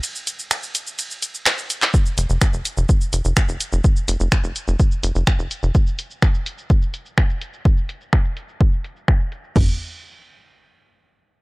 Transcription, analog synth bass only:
X:1
M:4/4
L:1/16
Q:1/4=126
K:Cphr
V:1 name="Analog synth bass" clef=bass
z16 | z2 F,,, F,,, z F,,, z F,,, z2 F,,, F,,, z F,,, z F,,, | z2 F,,, F,,, z F,,, z F,,, z2 F,,, F,,, z F,,, z F,,, | z16 |
z16 | F,,,2 z12 z2 |]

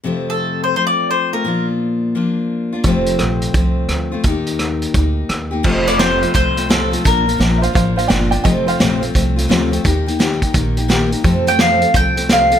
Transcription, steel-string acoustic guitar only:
X:1
M:4/4
L:1/8
Q:"Swing" 1/4=172
K:Fmix
V:1 name="Steel-string acoustic guitar"
[F,,C,F,A,CF]4 [F,A,CF]3 [F,A,CF] | [B,,F,B,DF]4 [F,B,DF]3 [B,DF] | [F,,C,F,A,CF]4 [F,A,CF]3 [F,A,CF] | [E,B,EG]4 [B,EG]3 [B,EG] |
[F,,C,F,A,CF] [F,A,CF] [F,,C,F,A,CF] [F,A,CF] [F,A,CF] [F,A,CF] [F,,C,F,A,CF] [F,A,CF] | [B,,F,B,DF] [B,DF] [B,,F,B,DF] [B,DF] [F,B,DF] [B,DF] [B,,F,B,DF] [B,DF] | [F,,C,F,A,CF] [F,A,CF] [F,,C,F,A,CF] [F,A,CF] [F,A,CF] [F,A,CF] [F,,C,F,A,CF] [F,A,CF] | [E,B,EG] [B,EG] [E,B,EG] [B,EG] [E,B,EG] [B,EG] [E,B,EG] [B,EG] |
[F,,C,F,A,CA] [F,A,CA] [F,,C,F,A,CA] [F,A,CA] [F,A,CA] [F,A,CA] [F,,C,F,A,CA] [F,A,CA] |]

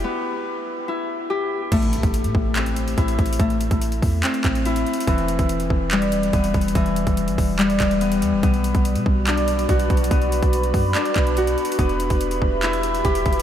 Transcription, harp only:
X:1
M:4/4
L:1/8
Q:1/4=143
K:Em
V:1 name="Harp"
[B,EG]4 E2 G2 | A,4 C2 E2 | A,4 C2 E2 | E,4 G,2 B,2 |
E,4 G,2 B,2 | B,4 D2 F2 | B,4 D2 F2 | B,4 E2 G2 |]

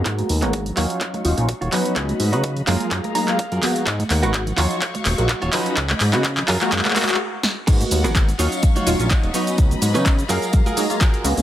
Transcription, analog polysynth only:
X:1
M:4/4
L:1/16
Q:"Swing 16ths" 1/4=126
K:G#dor
V:1 name="Analog polysynth"
[G,A,B,F]2 z [G,A,B,F]2 z [F,CDe]4 [F,CDE] [F,CDE] z2 [F,B,CD]2- | [F,B,CD]3 [F,B,CD]2 z [F,G,A,E]4 [F,G,A,D] [F,G,A,E] z2 [G,A,B,F]2 | z3 [G,A,B,F]2 z [F,CDE]2 z3 [G,A,F]2 z [F,CDE]2 | z3 [G,A,B,F] z3 [G,A,F] [G,A,F]2 [G,A,F]2 z4 |
[G,A,B,F]3 [G,A,B,F]2 z [F,CDe]4 [F,CDE] [F,CDE] z2 [F,B,CD]2- | [F,B,CD]3 [F,B,CD]2 z [F,G,A,e]4 [F,G,A,D] [F,G,A,E] z2 [G,A,B,F]2 |]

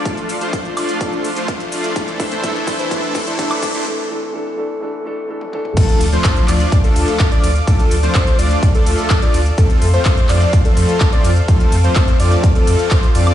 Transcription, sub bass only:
X:1
M:4/4
L:1/8
Q:1/4=126
K:Dm
V:1 name="Sub bass" clef=bass
z D,, z D,, z D,, z2 | z8 | z8 | D,, D,, D,, D,, D,, D,, D,, D,, |
D,, D,, D,, D,, D,, D,, D,, D,, | F,, F,, F,, F,, F,, F,, F,, F,, | F,, F,, F,, F,, F,, F,, F,, F,, |]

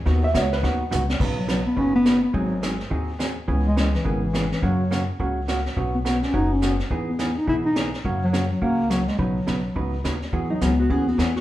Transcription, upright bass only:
X:1
M:4/4
L:1/8
Q:"Swing" 1/4=210
K:B
V:1 name="Upright bass" clef=bass
D,,2 C,,2 D,,2 C,,2 | B,,,4 F,,,4 | G,,,4 D,,4 | C,,4 G,,,4 |
F,,4 C,,4 | B,,,4 F,,,4 | E,,4 B,,,4 | F,,4 C,,4 |
B,,,2 B,,,2 C,,2 D,,2 | E,,2 C,,2 D,,2 E,,2 |]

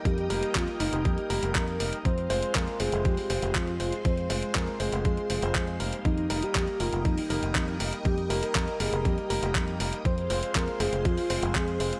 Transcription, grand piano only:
X:1
M:4/4
L:1/16
Q:1/4=120
K:Fm
V:1 name="Grand piano"
z2 [G,B,EB]4 [G,B,EB]4 [G,B,EB]4 [G,B,EB] z | z2 [A,CFc]4 [A,CFc]4 [A,CFc]4 [A,CFc] z | z2 [A,CFc]4 [A,CFc]4 [A,CFc] [A,CFc]3 [G,B,EB]2- | [G,B,EB]2 [G,B,EB]4 [G,B,EB]4 [G,B,EB]4 [G,B,EB] z |
z2 [G,B,EB]4 [G,B,EB]4 [G,B,EB]4 [G,B,EB] z | z2 [A,CFc]4 [A,CFc]4 [A,CFc]4 [A,CFc] z |]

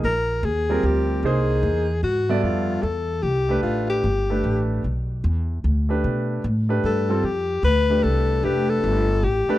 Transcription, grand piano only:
X:1
M:3/4
L:1/8
Q:"Swing" 1/4=150
K:Cm
V:1 name="Grand piano"
z3 [G,CFB]3 | [B,^D^Gc]3 z2 [=G,,_C=A=d=e]- | [K:Flyd] [G,,_CAde]2 z3 [A,DGB]- | [A,DGB]2 z [A,DGB]3 |
z4 z [A,DGB]- | [A,DGB]2 z [A,DGB]2 [G,CFA] | z3 [A,DGB]3 | [A,DGB]3 z2 [A,DGB] |]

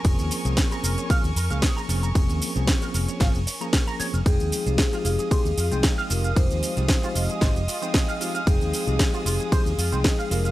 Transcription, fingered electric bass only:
X:1
M:4/4
L:1/16
Q:"Swing 16ths" 1/4=114
K:Fm
V:1 name="Fingered electric bass" clef=bass
F,,, E,, z C,, z2 F,,, z2 E,, F,, D,, z2 F,,,2 | F,,, E,, z C,, z2 F,,, z A,,, F,,, z4 z F,,, | F,,, E,, z C,, z2 F,,, z2 E,, F,, C,, z2 F,,,2 | F,,, E,, z C,, z2 F,,, z A,,, F,,, z6 |
F,,, E,, z C,, z2 F,,, z2 E,, F,, C,, z2 F,,,2 |]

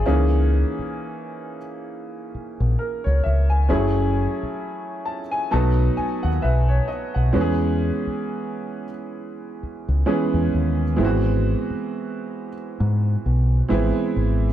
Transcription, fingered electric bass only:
X:1
M:4/4
L:1/16
Q:"Swing 16ths" 1/4=66
K:Elyd
V:1 name="Fingered electric bass" clef=bass
C,,3 z8 A,,, z C,, C,,2 | F,,,3 z4 z B,,,2 z D,, B,,,2 z B,,, | E,,3 z8 C,, z E,, D,,2 | G,,,3 z4 z G,,2 B,,,2 G,,, z G,,,2 |]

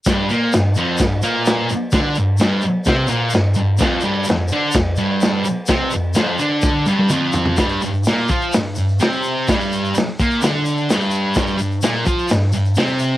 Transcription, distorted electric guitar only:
X:1
M:4/4
L:1/8
Q:1/4=127
K:Flyd
V:1 name="Distorted electric guitar" clef=bass
[G,,G,] [_B,,_B,] G,, [F,,F,] G,, [B,,B,]2 z | [D,D] G,, [G,,G,] z [C,C] [_B,,_B,] G,, G,, | [F,,F,] [G,,G,] F,, [D,D] F,, [G,,G,]2 z | [C,C] F,, [F,,F,] [D,D]2 [G,,G,] [F,,F,]2 |
[G,,G,] G,, [_B,,_B,] [F,F] G,, G,, [C,C]2 | [G,,G,]2 z [_B,,_B,] [D,D]2 [G,,G,]2 | [G,,G,] G,, [_B,,_B,] [F,F] G,, G,, [C,C]2 |]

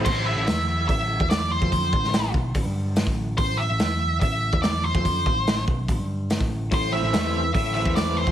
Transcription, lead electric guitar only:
X:1
M:4/4
L:1/8
Q:1/4=144
K:Am
V:1 name="Lead electric guitar"
c e3 e2 d c- | c3 z4 z | c e3 e2 d c- | c3 z4 z |
c e3 e e d c |]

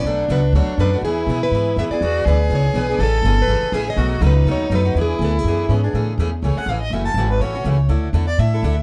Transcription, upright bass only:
X:1
M:4/4
L:1/8
Q:"Swing" 1/4=244
K:A
V:1 name="Upright bass" clef=bass
B,,,2 C,,2 D,, z F,,2 | E,,2 B,,2 G,,2 F,, z | E,,2 D,,2 C,,2 B,,,2 | A,,,2 =G,,,2 ^G,,, z A,,,2 |
B,,,2 C,,2 ^D,,2 F,,2 | E,,2 D,,2 F,,2 G,,2 | A,,2 E,,2 C,, z A,,,2 | F,,,2 G,,,2 A,,,2 C,,2 |
D,,2 E,,2 A,,2 D,,2 |]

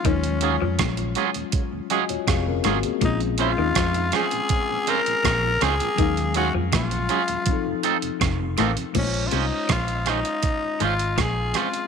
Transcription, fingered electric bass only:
X:1
M:4/4
L:1/16
Q:1/4=81
K:Bbm
V:1 name="Fingered electric bass" clef=bass
E,,3 F,, B,,,2 z6 F,,,2 A,,, z | B,,,3 E,, F,,2 z6 B,,,2 D,, z | E,,3 F,, B,,,2 z6 F,,,2 =A,,, z | B,,,2 C,, z B,,,3 z3 A,,,2 B,,,2 z2 |]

